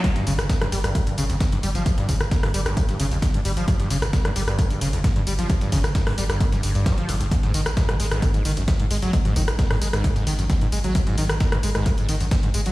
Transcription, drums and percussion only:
0.04 kick, closed hi-hat, tambourine
0.16 snare, closed hi-hat
0.27 open hi-hat, tambourine
0.39 cross-stick, closed hi-hat, tambourine
0.49 kick, snare, closed hi-hat, tambourine
0.61 cross-stick, closed hi-hat
0.72 snare, closed hi-hat, open hi-hat, tambourine
0.84 cross-stick, closed hi-hat, tambourine
0.95 kick, closed hi-hat, tambourine
1.07 closed hi-hat, tambourine
1.18 closed hi-hat, open hi-hat, tambourine
1.30 closed hi-hat, tambourine
1.40 kick, snare, closed hi-hat, tambourine
1.52 closed hi-hat
1.63 closed hi-hat, open hi-hat, tambourine
1.75 snare, closed hi-hat, tambourine
1.86 kick, closed hi-hat, tambourine
1.98 snare, closed hi-hat
2.09 kick, closed hi-hat, open hi-hat, tambourine
2.21 cross-stick, closed hi-hat, tambourine
2.31 kick, snare, closed hi-hat, tambourine
2.43 cross-stick, open hi-hat
2.54 closed hi-hat, open hi-hat, tambourine
2.66 cross-stick, closed hi-hat, tambourine
2.77 kick, closed hi-hat, tambourine
2.89 snare, closed hi-hat, tambourine
3.00 open hi-hat, tambourine
3.12 closed hi-hat, tambourine
3.22 kick, snare, closed hi-hat, tambourine
3.34 closed hi-hat
3.45 closed hi-hat, open hi-hat, tambourine
3.57 closed hi-hat, tambourine
3.68 kick, closed hi-hat, tambourine
3.80 snare, closed hi-hat
3.90 open hi-hat, tambourine
4.02 cross-stick, closed hi-hat, tambourine
4.13 kick, snare, closed hi-hat, tambourine
4.25 cross-stick, closed hi-hat
4.36 snare, closed hi-hat, open hi-hat, tambourine
4.48 cross-stick, closed hi-hat, tambourine
4.59 kick, closed hi-hat, tambourine
4.70 closed hi-hat, tambourine
4.81 closed hi-hat, open hi-hat, tambourine
4.93 closed hi-hat, tambourine
5.04 kick, snare, closed hi-hat, tambourine
5.16 closed hi-hat
5.27 closed hi-hat, open hi-hat, tambourine
5.39 snare, closed hi-hat, tambourine
5.50 kick, closed hi-hat, tambourine
5.61 snare, closed hi-hat, tambourine
5.72 kick, closed hi-hat, open hi-hat, tambourine
5.84 cross-stick, closed hi-hat, tambourine
5.95 kick, snare, closed hi-hat, tambourine
6.07 cross-stick, open hi-hat
6.18 closed hi-hat, open hi-hat, tambourine
6.30 cross-stick, closed hi-hat, tambourine
6.40 kick, closed hi-hat, tambourine
6.52 snare, closed hi-hat, tambourine
6.63 closed hi-hat, open hi-hat, tambourine
6.75 closed hi-hat, tambourine
6.86 kick, snare, closed hi-hat, tambourine
6.98 closed hi-hat
7.09 closed hi-hat, open hi-hat, tambourine
7.21 closed hi-hat, tambourine
7.31 kick, closed hi-hat, tambourine
7.43 snare, closed hi-hat
7.54 open hi-hat, tambourine
7.66 cross-stick, closed hi-hat, tambourine
7.77 kick, snare, closed hi-hat, tambourine
7.89 cross-stick, closed hi-hat
8.00 snare, closed hi-hat, open hi-hat, tambourine
8.11 cross-stick, closed hi-hat, tambourine
8.22 kick, closed hi-hat, tambourine
8.34 closed hi-hat, tambourine
8.45 closed hi-hat, open hi-hat, tambourine
8.57 closed hi-hat, tambourine
8.68 kick, snare, closed hi-hat, tambourine
8.80 closed hi-hat
8.91 closed hi-hat, open hi-hat, tambourine
9.02 snare, closed hi-hat, tambourine
9.13 kick, closed hi-hat, tambourine
9.25 snare, closed hi-hat
9.36 kick, closed hi-hat, open hi-hat, tambourine
9.48 cross-stick, closed hi-hat, tambourine
9.59 kick, snare, closed hi-hat, tambourine
9.71 cross-stick, open hi-hat
9.82 closed hi-hat, open hi-hat, tambourine
9.93 cross-stick, closed hi-hat, tambourine
10.04 kick, closed hi-hat, tambourine
10.16 snare, closed hi-hat, tambourine
10.27 open hi-hat, tambourine
10.39 closed hi-hat, tambourine
10.50 kick, snare, closed hi-hat, tambourine
10.61 closed hi-hat
10.72 closed hi-hat, open hi-hat, tambourine
10.84 closed hi-hat, tambourine
10.95 kick, closed hi-hat, tambourine
11.07 snare, closed hi-hat
11.18 open hi-hat, tambourine
11.29 cross-stick, closed hi-hat, tambourine
11.40 kick, snare, closed hi-hat, tambourine
11.52 cross-stick, closed hi-hat
11.63 closed hi-hat, open hi-hat, tambourine
11.75 cross-stick, closed hi-hat, tambourine
11.86 kick, closed hi-hat, tambourine
11.98 closed hi-hat, tambourine
12.09 closed hi-hat, open hi-hat, tambourine
12.20 closed hi-hat, tambourine
12.31 kick, snare, closed hi-hat, tambourine
12.43 closed hi-hat
12.54 closed hi-hat, open hi-hat, tambourine
12.66 snare, closed hi-hat, tambourine

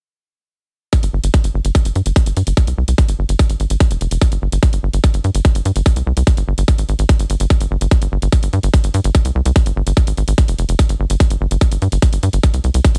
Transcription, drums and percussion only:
0.93 kick, closed hi-hat
1.03 closed hi-hat
1.24 closed hi-hat
1.34 kick, closed hi-hat
1.44 closed hi-hat
1.65 closed hi-hat
1.75 kick, closed hi-hat
1.85 closed hi-hat
1.95 closed hi-hat
2.06 closed hi-hat
2.16 kick, closed hi-hat
2.26 closed hi-hat
2.37 closed hi-hat
2.47 closed hi-hat
2.57 kick, closed hi-hat
2.67 closed hi-hat
2.88 closed hi-hat
2.98 kick, closed hi-hat
3.08 closed hi-hat
3.29 closed hi-hat
3.39 kick, closed hi-hat
3.50 closed hi-hat
3.60 closed hi-hat
3.70 closed hi-hat
3.80 kick, closed hi-hat
3.91 closed hi-hat
4.01 closed hi-hat
4.11 closed hi-hat
4.21 kick, closed hi-hat
4.32 closed hi-hat
4.52 closed hi-hat
4.63 kick, closed hi-hat
4.73 closed hi-hat
4.93 closed hi-hat
5.04 kick, closed hi-hat
5.14 closed hi-hat
5.24 closed hi-hat
5.35 closed hi-hat
5.45 kick, closed hi-hat
5.55 closed hi-hat
5.65 closed hi-hat
5.76 closed hi-hat
5.86 kick, closed hi-hat
5.96 closed hi-hat
6.17 closed hi-hat
6.27 kick, closed hi-hat
6.37 closed hi-hat
6.58 closed hi-hat
6.68 kick, closed hi-hat
6.78 closed hi-hat
6.89 closed hi-hat
6.99 closed hi-hat
7.09 kick, closed hi-hat
7.19 closed hi-hat
7.30 closed hi-hat
7.40 closed hi-hat
7.50 kick, closed hi-hat
7.61 closed hi-hat
7.81 closed hi-hat
7.91 kick, closed hi-hat
8.02 closed hi-hat
8.22 closed hi-hat
8.32 kick, closed hi-hat
8.43 closed hi-hat
8.53 closed hi-hat
8.63 closed hi-hat
8.74 kick, closed hi-hat
8.84 closed hi-hat
8.94 closed hi-hat
9.04 closed hi-hat
9.15 kick, closed hi-hat
9.25 closed hi-hat
9.45 closed hi-hat
9.56 kick, closed hi-hat
9.66 closed hi-hat
9.87 closed hi-hat
9.97 kick, closed hi-hat
10.07 closed hi-hat
10.17 closed hi-hat
10.28 closed hi-hat
10.38 kick, closed hi-hat
10.48 closed hi-hat
10.58 closed hi-hat
10.69 closed hi-hat
10.79 kick, closed hi-hat
10.89 closed hi-hat
11.10 closed hi-hat
11.20 kick, closed hi-hat
11.30 closed hi-hat
11.51 closed hi-hat
11.61 kick, closed hi-hat
11.72 closed hi-hat
11.82 closed hi-hat
11.92 closed hi-hat
12.02 kick, closed hi-hat
12.13 closed hi-hat
12.23 closed hi-hat
12.33 closed hi-hat
12.43 kick, closed hi-hat
12.54 closed hi-hat
12.64 closed hi-hat
12.74 closed hi-hat
12.85 kick, closed hi-hat
12.95 closed hi-hat

